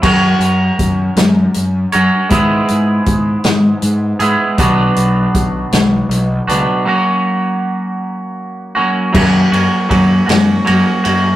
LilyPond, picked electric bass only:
\new Staff \with { instrumentName = "Picked electric bass" } { \clef bass \time 6/8 \key fis \mixolydian \tempo 4. = 53 fis,8 fis,8 fis,8 fis,8 fis,8 fis,16 r16 | gis,8 gis,8 gis,8 gis,8 gis,8 gis,16 r16 | b,,8 b,,8 b,,8 b,,8 b,,8 cis,16 r16 | r2. |
fis,8 fis,16 r16 fis,8 fis,8 fis,16 r16 fis,8 | }